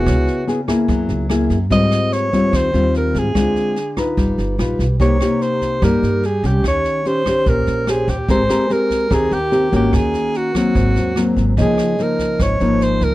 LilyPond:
<<
  \new Staff \with { instrumentName = "Celesta" } { \time 4/4 \key aes \major \tempo 4 = 146 r1 | r1 | r1 | r1 |
r1 | r1 | r1 | ees''1 | }
  \new Staff \with { instrumentName = "Alto saxophone" } { \time 4/4 \key aes \major ges'4. r2 r8 | ees''4 des''4 c''4 bes'8 aes'8~ | aes'4. r2 r8 | des''4 c''4 bes'4 aes'8 g'8 |
des''4 c''4 bes'4 aes'8 g'8 | c''4 bes'4 aes'8 g'4 g'8 | aes'4 ges'8 ges'2 r8 | aes'4 bes'4 des''4 c''8 bes'8 | }
  \new Staff \with { instrumentName = "Nylon-string guitar" } { \time 4/4 \key aes \major << { <b e' aes'>4 <ces' fes' aes'>8 <bes fes' aes'>4. <bes fes' aes'>8 r8 | <g c' f'>4. <g c' f'>4 <g c' f'>4. | <aes c' f'>4 r8 <ees' f' b'>4. <dis' f' b'>8 r8 | <bes ees' g'>8 <bes ees' g'>4. <bes ees' g'>4 r8 <des' g'>8~ |
<des' g'>4 <des' g' c''>8 <des' g' c''>4. <des' g' c''>8 r8 | <c' g' bes'>8 <c' g' bes'>8 <c' g' bes'>4 <c' g' bes'>8 r8 <c' g' bes'>8 <bes des' ges'>8~ | <bes des' ges'>4. <ges bes c'>4. <ges bes c'>4 | <f bes ees'>4 <f bes ees'>4. <f bes ees'>4. | } \\ { des2 ges2 | aes,2 ees2 | d2 g2 | c2 g2 |
ees2 bes,2 | aes2 ees2 | ees2 aes,2 | des2 aes,2 | } >> }
  \new Staff \with { instrumentName = "Upright bass" } { \clef bass \time 4/4 \key aes \major des,8 r4. ges,8 des,4 ges,8 | aes,8 r4. ees,8 ees,4 aes,8 | d,8 r4. g,,8 g,,8 ais,,8 b,,8 | c,8 r4. g,8 g,4 c,8 |
ees,8 r4. bes,,8 bes,,4 ees,8 | aes,,8 r4. ees,8 ees,4 aes,,8 | ees,8 r4. aes,,8 ees,4 aes,,8 | des,8 r4. aes,,8 aes,,4 des,8 | }
  \new DrumStaff \with { instrumentName = "Drums" } \drummode { \time 4/4 <bd ss sn>8 sn8 sn8 <bd ss sn>8 <bd sn>8 sn8 <ss sn>8 <bd sn>8 | <bd sn>8 <ss sn>8 sn8 <bd sn>8 <bd ss sn>8 sn8 sn8 <bd sn>8 | <bd ss sn>8 sn8 sn8 <bd ss sn>8 <bd sn>8 sn8 <ss sn>8 <bd sn>8 | <bd sn>8 <ss sn>8 sn8 <bd sn>8 <bd ss sn>8 sn8 sn8 <bd sn>8 |
<bd ss sn>8 sn8 sn8 <bd ss sn>8 <bd sn>8 sn8 <ss sn>8 <bd sn>8 | <bd sn>8 <ss sn>8 sn8 <bd sn>8 <bd ss sn>8 sn8 sn8 <bd sn>8 | <bd ss sn>8 sn8 sn8 <bd ss sn>8 <bd sn>8 sn8 <ss sn>8 <bd sn>8 | <bd sn>8 <ss sn>8 sn8 <bd sn>8 <bd ss sn>8 sn8 sn8 <bd sn>8 | }
>>